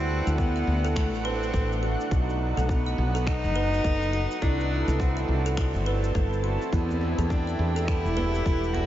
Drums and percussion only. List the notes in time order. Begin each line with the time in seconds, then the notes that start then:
0.27 shaker
0.38 kick, shaker
0.57 shaker
0.85 shaker
0.96 finger snap, kick, shaker
1.15 shaker
1.43 shaker
1.54 kick, shaker
1.72 shaker
2.01 shaker
2.11 kick, shaker
2.30 shaker
2.58 shaker
2.69 kick, shaker
2.88 shaker
3.16 shaker
3.27 finger snap, kick, shaker
3.45 shaker
3.74 shaker
3.84 kick, shaker
4.02 shaker
4.31 shaker
4.42 kick, shaker
4.60 shaker
4.89 shaker
5.00 kick, shaker
5.18 shaker
5.47 shaker
5.57 finger snap, kick, shaker
5.75 shaker
6.04 shaker
6.15 kick, shaker
6.33 shaker
6.62 shaker
6.73 kick, djembe bass, shaker
6.89 djembe tone, shaker
7.01 djembe slap
7.18 djembe bass, shaker
7.30 kick, shaker
7.48 shaker
7.77 shaker
7.88 finger snap, kick, shaker
8.06 shaker
8.17 djembe tone
8.35 shaker
8.46 kick, shaker
8.64 shaker
8.74 djembe tone